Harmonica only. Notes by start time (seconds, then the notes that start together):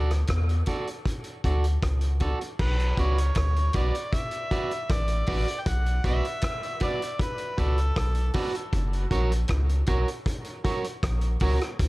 2.61 B4
3.00 C#5
3.76 D5
4.14 E5
4.91 D5
5.61 G5
5.68 F#5
6.07 E5
6.83 D5
7.21 B4
7.60 A4